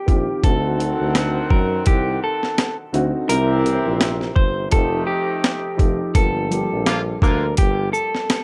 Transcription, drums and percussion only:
0.08 kick medium
0.08 closed hi-hat soft
0.44 kick loud
0.44 closed hi-hat medium
0.80 closed hi-hat medium
1.15 cross-stick loud
1.15 snare loud
1.15 closed hi-hat medium
1.50 kick medium
1.86 kick medium
1.86 closed hi-hat medium
2.43 snare soft
2.58 cross-stick medium
2.58 snare loud
2.58 closed hi-hat medium
2.94 closed hi-hat soft
3.30 closed hi-hat loud
3.66 closed hi-hat soft
4.01 cross-stick loud
4.01 snare loud
4.01 closed hi-hat medium
4.21 snare soft
4.36 kick medium
4.71 kick medium
4.71 closed hi-hat medium
5.44 cross-stick medium
5.44 snare loud
5.44 closed hi-hat medium
5.79 kick medium
5.79 closed hi-hat soft
6.15 kick loud
6.15 closed hi-hat loud
6.52 closed hi-hat medium
6.52 shaker medium
6.86 cross-stick loud
6.86 snare loud
6.86 closed hi-hat medium
7.22 kick medium
7.22 shaker medium
7.57 kick medium
7.57 closed hi-hat medium
7.94 shaker medium
8.15 snare soft
8.30 cross-stick medium
8.30 snare loud
8.30 closed hi-hat medium

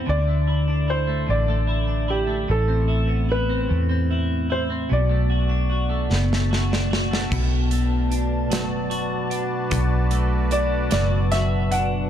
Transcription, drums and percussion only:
6.13 snare soft
6.33 snare soft
6.53 snare medium
6.73 snare medium
6.93 snare medium
7.13 snare medium
7.32 kick medium
7.32 crash medium
7.71 closed hi-hat soft
8.12 closed hi-hat soft
8.52 snare medium
8.52 closed hi-hat medium
8.91 closed hi-hat soft
9.31 closed hi-hat soft
9.71 kick medium
9.71 closed hi-hat medium
10.11 closed hi-hat soft
10.51 closed hi-hat soft
10.91 snare medium
10.91 closed hi-hat medium
11.32 snare soft
11.32 closed hi-hat soft
11.72 closed hi-hat soft

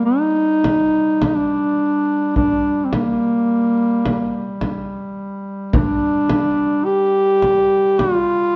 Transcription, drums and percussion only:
0.64 frame drum soft
1.22 frame drum soft
2.36 frame drum soft
2.93 frame drum soft
4.06 frame drum soft
4.61 frame drum soft
5.73 frame drum medium
6.29 frame drum soft
7.42 frame drum soft
7.99 frame drum soft

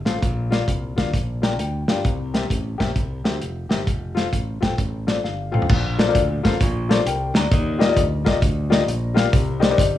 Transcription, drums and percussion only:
0.06 snare loud
0.06 closed hi-hat medium
0.23 kick loud
0.23 closed hi-hat medium
0.52 snare medium
0.52 closed hi-hat medium
0.68 kick medium
0.68 closed hi-hat medium
0.98 kick medium
0.98 snare loud
0.98 closed hi-hat medium
1.14 kick loud
1.14 closed hi-hat medium
1.43 snare loud
1.43 closed hi-hat medium
1.59 closed hi-hat medium
1.88 snare loud
1.88 closed hi-hat medium
2.05 kick loud
2.05 closed hi-hat medium
2.34 snare medium
2.34 closed hi-hat medium
2.50 kick medium
2.50 closed hi-hat medium
2.80 kick medium
2.80 snare loud
2.80 closed hi-hat medium
2.96 kick loud
2.96 closed hi-hat medium
3.25 snare loud
3.25 closed hi-hat medium
3.42 closed hi-hat medium
3.71 snare loud
3.71 closed hi-hat medium
3.87 kick medium
3.87 closed hi-hat medium
4.17 snare medium
4.17 closed hi-hat medium
4.33 kick medium
4.33 closed hi-hat medium
4.63 kick medium
4.63 snare loud
4.63 closed hi-hat medium
4.78 kick medium
4.78 closed hi-hat medium
5.08 snare loud
5.08 closed hi-hat medium
5.25 snare soft
5.54 mid tom medium
5.62 floor tom medium
5.69 kick loud
5.69 crash loud
5.99 snare loud
5.99 closed hi-hat medium
6.15 kick medium
6.15 closed hi-hat loud
6.45 kick medium
6.45 snare loud
6.45 closed hi-hat medium
6.61 kick loud
6.61 closed hi-hat loud
6.91 snare loud
6.91 closed hi-hat medium
7.06 closed hi-hat loud
7.35 snare loud
7.35 closed hi-hat medium
7.51 kick loud
7.51 closed hi-hat loud
7.81 snare loud
7.81 closed hi-hat medium
7.97 kick medium
7.97 closed hi-hat loud
8.26 kick medium
8.26 snare loud
8.26 closed hi-hat medium
8.42 kick loud
8.42 closed hi-hat loud
8.72 snare loud
8.72 closed hi-hat medium
8.88 closed hi-hat medium
9.17 snare loud
9.17 closed hi-hat medium
9.33 kick loud
9.33 closed hi-hat loud
9.62 snare loud
9.62 closed hi-hat medium
9.78 kick medium
9.78 closed hi-hat loud

